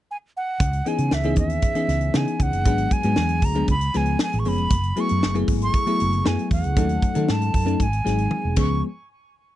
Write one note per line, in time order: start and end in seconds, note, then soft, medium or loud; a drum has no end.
0.11 0.17 G#5 medium
0.37 0.89 F#5 medium
0.60 0.80 C#2 medium
0.60 kick loud
0.60 closed hi-hat medium
0.73 closed hi-hat soft
0.85 1.12 E3 medium
0.85 1.12 B3 medium
0.85 1.12 C#4 medium
0.85 1.12 D#4 medium
0.85 1.12 G#4 medium
0.85 1.15 G#5 medium
0.85 closed hi-hat medium
0.98 1.09 C#3 medium
0.98 closed hi-hat medium
1.11 1.37 C#2 medium
1.11 1.38 E5 medium
1.11 snare medium
1.23 1.59 E3 medium
1.23 1.59 B3 medium
1.23 1.59 C#4 medium
1.23 1.59 D#4 medium
1.23 1.60 G#4 medium
1.23 closed hi-hat soft
1.36 1.57 D#2 medium
1.36 2.18 E5 medium
1.36 kick medium
1.36 closed hi-hat medium
1.50 closed hi-hat soft
1.62 kick medium
1.62 closed hi-hat medium
1.74 2.01 E3 medium
1.74 2.02 B3 medium
1.74 2.02 C#4 medium
1.74 2.02 D#4 medium
1.74 2.02 G#4 medium
1.74 closed hi-hat medium
1.88 2.09 C#2 medium
1.88 snare soft
1.88 closed hi-hat medium
2.01 closed hi-hat soft
2.14 2.24 C#3 medium
2.14 2.49 E3 medium
2.14 2.49 B3 medium
2.14 2.49 C#4 medium
2.14 2.49 D#4 medium
2.14 2.50 G#4 medium
2.14 2.44 G#5 medium
2.14 snare loud
2.28 closed hi-hat soft
2.40 2.50 C#2 medium
2.40 2.94 F#5 medium
2.40 kick medium
2.40 closed hi-hat medium
2.53 2.65 F#1 medium
2.53 closed hi-hat soft
2.65 2.86 G#1 loud
2.65 2.91 F#3 medium
2.65 2.92 G#3 medium
2.65 2.92 B3 medium
2.65 2.92 D4 medium
2.65 2.92 G#4 medium
2.65 kick loud
2.65 closed hi-hat medium
2.78 closed hi-hat soft
2.91 3.46 G#5 medium
2.91 kick medium
2.91 closed hi-hat medium
3.03 3.14 G#2 medium
3.03 3.39 F#3 medium
3.03 3.39 G#3 medium
3.03 3.39 B3 medium
3.03 3.39 D4 medium
3.03 3.40 G#4 medium
3.03 closed hi-hat medium
3.16 3.42 E2 medium
3.16 snare loud
3.29 closed hi-hat soft
3.42 3.63 D2 medium
3.42 3.69 A#5 medium
3.42 kick medium
3.42 open hi-hat medium
3.55 3.68 F#3 medium
3.55 3.68 G#3 medium
3.55 3.68 B3 medium
3.55 3.68 D4 medium
3.55 3.68 G#4 medium
3.55 closed hi-hat medium
3.68 3.88 C#2 loud
3.68 3.98 B5 medium
3.68 kick medium
3.68 closed hi-hat medium
3.81 closed hi-hat medium
3.94 4.15 C#2 medium
3.94 4.29 F3 medium
3.94 4.29 G#3 medium
3.94 4.29 B3 medium
3.94 4.29 C#4 medium
3.94 4.30 G#4 medium
3.94 4.21 G#5 medium
3.94 snare soft
3.94 closed hi-hat medium
4.06 closed hi-hat soft
4.19 4.41 G#5 medium
4.19 snare loud
4.33 4.43 A1 medium
4.33 closed hi-hat soft
4.39 4.50 C#6 medium
4.45 4.60 F#1 medium
4.45 4.71 F3 medium
4.45 4.71 G#3 medium
4.45 4.71 B3 medium
4.45 4.71 C#4 medium
4.45 4.71 G#4 medium
4.45 5.02 B5 medium
4.45 open hi-hat medium
4.58 4.69 F1 medium
4.58 closed hi-hat soft
4.70 4.91 F#1 medium
4.70 kick loud
4.70 closed hi-hat medium
4.83 closed hi-hat soft
4.96 5.23 F#3 medium
4.96 5.23 A3 medium
4.96 5.23 B3 medium
4.96 5.23 E4 medium
4.96 5.23 G#4 medium
4.96 closed hi-hat medium
5.00 5.36 C#6 medium
5.09 5.21 F#2 medium
5.09 closed hi-hat medium
5.23 5.44 F#1 medium
5.23 snare loud
5.34 5.70 F#3 medium
5.34 5.70 A3 medium
5.34 5.70 B3 medium
5.34 5.70 E4 medium
5.34 5.70 G#4 medium
5.34 closed hi-hat soft
5.48 5.68 G#1 medium
5.48 kick medium
5.48 open hi-hat medium
5.62 6.29 C#6 loud
5.62 closed hi-hat soft
5.74 kick medium
5.74 closed hi-hat medium
5.86 6.13 F#3 medium
5.86 6.13 A3 medium
5.86 6.13 B3 medium
5.86 6.14 E4 medium
5.86 6.13 G#4 medium
5.86 closed hi-hat soft
6.00 6.21 F#1 medium
6.00 closed hi-hat medium
6.13 closed hi-hat soft
6.25 6.36 F#2 loud
6.25 6.60 F#3 medium
6.25 6.60 A3 medium
6.25 6.60 B3 medium
6.25 6.61 E4 medium
6.25 6.61 G#4 medium
6.25 6.52 G#5 medium
6.25 snare loud
6.39 closed hi-hat soft
6.51 6.61 E2 medium
6.51 7.32 F#5 medium
6.51 kick medium
6.51 open hi-hat medium
6.64 6.77 C#2 medium
6.64 closed hi-hat soft
6.76 6.97 D#2 medium
6.76 7.03 F#3 medium
6.76 7.03 A3 medium
6.76 7.03 C#4 medium
6.76 7.03 D#4 medium
6.76 7.04 A4 medium
6.76 kick loud
6.76 closed hi-hat medium
6.89 closed hi-hat soft
7.02 kick medium
7.02 closed hi-hat medium
7.15 7.26 D#3 medium
7.15 7.50 F#3 medium
7.15 7.50 A3 medium
7.15 7.50 C#4 medium
7.15 7.51 D#4 medium
7.15 7.51 A4 medium
7.15 closed hi-hat medium
7.29 7.49 G#2 medium
7.29 7.84 A5 medium
7.29 snare medium
7.42 closed hi-hat medium
7.54 7.74 F#2 medium
7.54 kick medium
7.54 open hi-hat medium
7.66 7.79 F#3 medium
7.66 7.79 A3 medium
7.66 7.79 C#4 medium
7.66 7.80 D#4 medium
7.66 7.80 A4 medium
7.66 closed hi-hat medium
7.79 8.00 G#1 medium
7.79 8.58 G#5 medium
7.79 kick medium
7.79 closed hi-hat medium
7.93 closed hi-hat soft
8.04 8.26 G#1 medium
8.04 8.40 F#3 medium
8.04 8.40 G#3 medium
8.04 8.41 C4 medium
8.04 8.41 D#4 medium
8.04 8.41 G#4 medium
8.04 snare soft
8.04 closed hi-hat medium
8.18 closed hi-hat soft
8.31 high tom medium
8.45 8.55 E1 medium
8.56 8.81 C#2 medium
8.56 8.81 F3 medium
8.56 8.81 G#3 medium
8.56 8.81 B3 medium
8.56 8.81 C#4 medium
8.56 8.81 G#4 medium
8.56 8.82 C#6 medium
8.56 kick medium
8.56 crash medium